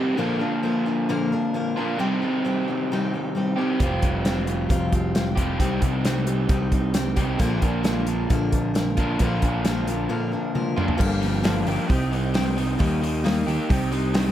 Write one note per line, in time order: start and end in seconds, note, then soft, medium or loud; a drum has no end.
0.00 0.16 C3 medium
0.00 0.17 D#3 medium
0.00 0.18 G3 medium
0.00 0.18 C4 soft
0.00 0.19 D#4 soft
0.00 0.18 G4 medium
0.17 0.41 A#2 medium
0.17 0.41 D3 medium
0.17 0.41 F3 medium
0.17 0.40 A#3 medium
0.17 0.39 D4 medium
0.17 1.75 F4 medium
0.17 0.38 A#4 medium
0.39 0.62 F3 soft
0.39 0.62 A#3 soft
0.39 0.64 D4 soft
0.39 0.63 A#4 medium
0.63 0.86 F3 medium
0.63 0.86 A#3 medium
0.63 0.85 D4 medium
0.63 0.85 A#4 medium
0.86 1.08 F3 soft
0.86 1.09 A#3 soft
0.86 1.09 D4 soft
0.86 1.09 A#4 medium
1.09 1.32 A#2 medium
1.09 1.32 D3 medium
1.09 1.32 F3 medium
1.09 1.32 A#3 medium
1.09 1.31 D4 medium
1.09 1.31 A#4 medium
1.32 1.53 F3 soft
1.32 1.54 A#3 soft
1.32 1.54 D4 medium
1.32 1.55 A#4 medium
1.54 1.77 F3 medium
1.54 1.77 A#3 medium
1.54 1.76 D4 medium
1.54 1.76 A#4 medium
1.76 1.97 A#2 medium
1.76 1.99 D3 medium
1.76 1.99 F3 soft
1.76 2.00 A#3 soft
1.76 2.00 D4 soft
1.76 1.98 F4 medium
1.76 2.00 A#4 medium
1.99 2.22 C3 medium
1.99 3.56 D#3 medium
1.99 2.22 G3 medium
1.99 2.22 C4 medium
1.99 2.22 D#4 medium
1.99 2.21 G4 medium
2.22 2.44 C4 soft
2.22 2.45 D#4 soft
2.22 2.45 G4 soft
2.45 2.67 G3 medium
2.45 2.68 C4 medium
2.45 2.68 D#4 medium
2.45 2.67 G4 medium
2.68 2.91 C4 soft
2.68 2.91 D#4 soft
2.68 2.90 G4 soft
2.92 3.13 C3 medium
2.92 3.14 G3 medium
2.92 3.14 C4 medium
2.92 3.14 D#4 medium
2.92 3.12 G4 medium
3.14 3.35 C4 soft
3.14 3.36 D#4 soft
3.14 3.36 G4 soft
3.35 3.58 G3 medium
3.35 3.58 C4 medium
3.35 3.58 D#4 medium
3.35 3.57 G4 medium
3.57 3.79 C3 medium
3.57 3.79 D#3 medium
3.57 3.80 G3 medium
3.57 3.81 C4 medium
3.57 3.81 D#4 soft
3.57 3.81 G4 medium
3.61 3.79 C4 soft
3.80 4.01 F1 medium
3.80 4.03 F3 medium
3.80 5.36 G3 medium
3.80 4.03 C4 medium
3.80 4.03 F4 medium
3.80 4.01 G4 medium
3.80 kick medium
3.80 closed hi-hat medium
4.02 4.66 F1 medium
4.02 4.25 C4 soft
4.02 4.25 F4 soft
4.02 4.25 G4 soft
4.02 kick medium
4.02 closed hi-hat medium
4.25 4.48 F3 medium
4.25 4.48 C4 medium
4.25 4.47 F4 medium
4.25 4.46 G4 medium
4.25 snare medium
4.25 closed hi-hat medium
4.47 4.69 C4 soft
4.47 4.69 F4 soft
4.47 4.70 G4 soft
4.47 closed hi-hat medium
4.69 5.56 F1 medium
4.69 4.92 F3 medium
4.69 4.93 C4 medium
4.69 4.93 F4 medium
4.69 4.92 G4 medium
4.69 kick loud
4.69 closed hi-hat medium
4.92 5.14 C4 soft
4.92 5.15 F4 soft
4.92 5.15 G4 medium
4.92 kick medium
4.92 closed hi-hat medium
5.15 5.38 F3 medium
5.15 5.38 C4 medium
5.15 5.38 F4 medium
5.15 5.36 G4 medium
5.15 snare loud
5.15 closed hi-hat medium
5.37 5.58 F3 medium
5.37 5.58 G3 medium
5.37 5.60 C4 soft
5.37 5.61 F4 soft
5.37 5.60 G4 medium
5.37 kick medium
5.37 closed hi-hat medium
5.58 5.80 C2 medium
5.58 5.83 C3 medium
5.58 7.15 D#3 medium
5.58 5.83 G3 medium
5.58 5.83 C4 medium
5.58 5.82 D#4 medium
5.58 5.81 G4 medium
5.58 kick medium
5.58 closed hi-hat medium
5.82 6.46 C2 medium
5.82 6.05 C4 soft
5.82 6.05 D#4 soft
5.82 6.05 G4 medium
5.82 kick medium
5.82 closed hi-hat medium
6.05 6.28 G3 medium
6.05 6.28 C4 medium
6.05 6.27 D#4 medium
6.05 6.26 G4 medium
6.05 snare medium
6.05 closed hi-hat medium
6.27 6.49 C4 soft
6.27 6.49 D#4 soft
6.27 6.50 G4 soft
6.27 closed hi-hat medium
6.49 7.36 C2 medium
6.49 6.72 C3 medium
6.49 6.72 G3 medium
6.49 6.72 C4 medium
6.49 6.72 D#4 medium
6.49 6.70 G4 medium
6.49 kick medium
6.49 closed hi-hat medium
6.72 6.93 C4 soft
6.72 6.94 D#4 medium
6.72 6.95 G4 medium
6.72 kick medium
6.72 closed hi-hat medium
6.94 7.17 G3 medium
6.94 7.17 C4 medium
6.94 7.16 D#4 medium
6.94 7.15 G4 medium
6.94 snare loud
6.94 closed hi-hat medium
7.16 7.38 C3 medium
7.16 7.39 D#3 medium
7.16 7.39 G3 medium
7.16 7.40 C4 soft
7.16 7.39 D#4 soft
7.16 7.39 G4 medium
7.16 kick medium
7.16 closed hi-hat medium
7.39 7.60 A#1 medium
7.39 7.62 A#2 medium
7.39 7.62 D3 medium
7.39 7.62 F3 medium
7.39 7.61 A#3 medium
7.39 7.61 D4 medium
7.39 8.96 F4 medium
7.39 7.61 A#4 medium
7.39 kick medium
7.39 closed hi-hat medium
7.62 8.26 A#1 medium
7.62 7.82 F3 soft
7.62 7.83 A#3 soft
7.62 7.84 D4 soft
7.62 7.84 A#4 medium
7.62 kick medium
7.62 closed hi-hat medium
7.83 8.07 F3 medium
7.83 8.07 A#3 medium
7.83 8.07 D4 medium
7.83 8.06 A#4 medium
7.83 snare medium
7.83 closed hi-hat medium
8.07 8.29 F3 soft
8.07 8.29 A#3 soft
8.07 8.30 D4 soft
8.07 8.30 A#4 soft
8.07 closed hi-hat medium
8.30 9.16 A#1 medium
8.30 8.52 A#2 medium
8.30 8.53 D3 medium
8.30 8.53 F3 medium
8.30 8.53 A#3 medium
8.30 8.52 D4 medium
8.30 8.51 A#4 medium
8.30 kick medium
8.30 closed hi-hat medium
8.52 8.73 F3 soft
8.52 8.73 A#3 soft
8.52 8.74 D4 medium
8.52 8.74 A#4 soft
8.52 kick medium
8.52 closed hi-hat medium
8.74 8.97 F3 medium
8.74 8.97 A#3 medium
8.74 8.97 D4 medium
8.74 8.96 A#4 medium
8.74 snare loud
8.74 closed hi-hat medium
8.97 9.18 A#2 medium
8.97 9.19 D3 medium
8.97 9.19 F3 soft
8.97 9.20 A#3 soft
8.97 9.20 D4 soft
8.97 9.22 F4 medium
8.97 9.20 A#4 medium
8.97 kick medium
8.97 closed hi-hat medium
9.19 9.41 A#1 medium
9.19 9.43 A#2 medium
9.19 9.43 D3 medium
9.19 9.42 F3 medium
9.19 9.42 A#3 medium
9.19 9.41 D4 medium
9.19 10.75 F4 medium
9.19 9.40 A#4 medium
9.19 kick medium
9.19 closed hi-hat medium
9.42 10.06 A#1 medium
9.42 9.63 F3 soft
9.42 9.64 A#3 soft
9.42 9.65 D4 soft
9.42 9.65 A#4 medium
9.42 kick medium
9.42 closed hi-hat medium
9.64 9.87 F3 medium
9.64 9.87 A#3 medium
9.64 9.87 D4 medium
9.64 9.86 A#4 medium
9.64 snare medium
9.64 closed hi-hat medium
9.87 10.09 F3 soft
9.87 10.08 A#3 soft
9.87 10.09 D4 soft
9.87 10.09 A#4 medium
9.87 closed hi-hat medium
10.09 10.32 A#2 medium
10.09 10.32 D3 medium
10.09 10.32 F3 medium
10.09 10.32 A#3 medium
10.09 10.32 D4 medium
10.09 10.31 A#4 medium
10.32 10.54 F3 soft
10.32 10.54 A#3 soft
10.32 10.55 D4 medium
10.32 10.55 A#4 medium
10.55 10.77 F3 medium
10.55 10.77 A#3 medium
10.55 10.76 D4 medium
10.55 10.75 A#4 medium
10.55 high tom medium
10.76 11.00 A#2 medium
10.76 11.00 D3 medium
10.76 10.97 F3 soft
10.76 10.98 A#3 soft
10.76 10.98 D4 soft
10.76 10.98 F4 medium
10.76 10.99 A#4 medium
10.76 mid tom medium
10.88 floor tom medium
10.96 11.63 G1 medium
10.96 11.21 G2 medium
10.96 11.21 D3 medium
10.96 11.21 F3 medium
10.96 11.21 A#3 medium
10.96 11.20 D4 medium
10.96 11.18 G4 medium
10.96 11.87 A#4 medium
10.96 11.87 F5 medium
10.96 13.65 G5 medium
10.96 11.87 D6 medium
11.00 kick medium
11.00 crash medium
11.19 11.43 F3 soft
11.19 11.43 A#3 soft
11.19 11.43 D4 medium
11.19 11.43 G4 soft
11.19 open hi-hat soft
11.43 11.67 G2 medium
11.43 11.67 D3 medium
11.43 11.66 F3 medium
11.43 11.66 A#3 medium
11.43 11.65 D4 medium
11.43 11.64 G4 medium
11.43 snare loud
11.43 open hi-hat medium
11.65 11.77 G1 medium
11.65 11.88 F3 soft
11.65 11.89 A#3 soft
11.65 11.89 D4 soft
11.65 11.89 G4 medium
11.65 open hi-hat soft
11.86 12.76 C2 medium
11.86 12.79 C3 medium
11.86 12.12 G3 medium
11.86 12.12 C4 medium
11.86 12.12 D#4 medium
11.86 12.11 G4 medium
11.86 12.77 C5 medium
11.86 12.76 D#5 medium
11.86 14.32 D#6 medium
11.86 kick loud
11.86 open hi-hat medium
12.12 12.56 G3 medium
12.12 12.35 C4 soft
12.12 12.34 D#4 medium
12.12 12.34 G4 medium
12.12 open hi-hat soft
12.34 12.57 C3 medium
12.34 12.78 D#3 medium
12.34 12.57 G3 medium
12.34 12.58 C4 medium
12.34 12.58 D#4 medium
12.34 12.56 G4 medium
12.34 snare loud
12.34 open hi-hat medium
12.57 13.24 G3 medium
12.57 12.79 C4 soft
12.57 12.78 D#4 medium
12.57 12.79 G4 medium
12.57 open hi-hat soft
12.77 13.43 D#2 loud
12.77 13.02 D#3 medium
12.77 13.02 G3 medium
12.77 13.02 A#3 medium
12.77 13.02 D#4 medium
12.77 13.00 G4 medium
12.77 13.68 A#4 medium
12.77 14.32 D#5 medium
12.77 kick medium
12.77 open hi-hat medium
13.01 13.70 D#3 medium
13.01 13.23 A#3 soft
13.01 13.24 D#4 medium
13.01 13.24 G4 medium
13.01 open hi-hat medium
13.24 13.47 D#3 medium
13.24 13.47 G3 medium
13.24 13.47 A#3 medium
13.24 13.46 D#4 medium
13.24 13.45 G4 medium
13.24 snare loud
13.24 open hi-hat medium
13.46 13.58 D#2 medium
13.46 13.70 A#3 soft
13.46 13.70 D#4 soft
13.46 13.69 G4 medium
13.46 open hi-hat medium
13.69 14.32 C2 medium
13.69 14.32 C3 medium
13.69 13.92 G3 medium
13.69 13.92 C4 medium
13.69 13.91 D#4 medium
13.69 13.90 G4 medium
13.69 14.32 C5 medium
13.69 14.32 G5 medium
13.69 kick loud
13.69 open hi-hat medium
13.91 14.32 G3 medium
13.91 14.13 C4 soft
13.91 14.13 D#4 soft
13.91 14.14 G4 medium
13.91 open hi-hat soft
14.14 14.32 C3 medium
14.14 14.32 D#3 medium
14.14 14.32 G3 medium
14.14 14.32 C4 medium
14.14 14.32 D#4 medium
14.14 14.32 G4 medium
14.14 snare loud
14.14 open hi-hat medium